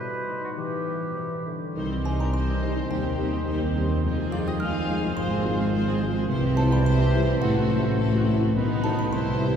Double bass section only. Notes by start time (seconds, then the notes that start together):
1.76 C2
2.90 D#2
4.04 F1
5.17 G#1
6.29 C2
7.42 A1
8.56 B1
9.13 C2